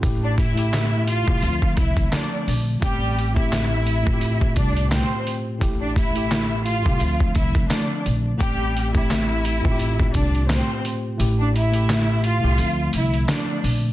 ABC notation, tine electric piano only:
X:1
M:4/4
L:1/16
Q:"Swing 16ths" 1/4=86
K:Am
V:1 name="Tine electric piano"
[A,,A,EG]2 z [A,,A,EG]3 z [A,,A,EG] [D,F,A,C]6 z2 | [A,,A,CG]2 z [A,,A,CG]3 z [A,,A,CFG]6 z3 | [A,,A,EG]2 z [A,,A,EG]3 z [A,,A,EG] [D,F,A,C]6 z2 | [A,,A,CG]2 z [A,,A,CG]3 z [A,,A,CFG]6 z3 |
[A,,A,EG]2 z [A,,A,EG]3 z [A,,A,EG] [D,F,A,C]6 z2 |]